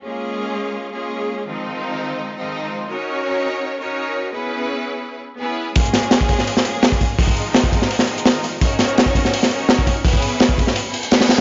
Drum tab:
HH |----------------|----------------|----------------|----------------|
SD |----------------|----------------|----------------|----------------|
BD |----------------|----------------|----------------|----------------|

HH |oxoxo-o-o-o-o-o-|o-o-o-o-o-oxo-o-|oxoxo-o-o-o-o-o-|o-o-o-o-o-oxooo-|
SD |--o-o--o-o--o---|----o--o-o--o---|--o-o--o-o--o---|----o--o----ooo-|
BD |o----oo------oo-|oo---oo---------|o----oo------oo-|oo---oo---------|